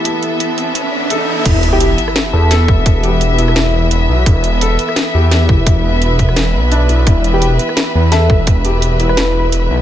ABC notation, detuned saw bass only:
X:1
M:4/4
L:1/8
Q:"Swing 16ths" 1/4=171
K:Em
V:1 name="Detuned saw bass" clef=bass
z8 | E,,,3 z2 E,,2 E,,,- | E,,,6 E,,, B,,, | E,,,3 z2 E,,2 E,,,- |
E,,,4- E,,, B,,,2 B,,, | E,,,3 z2 E,,2 E,,,- | E,,,6 E,,, B,,, |]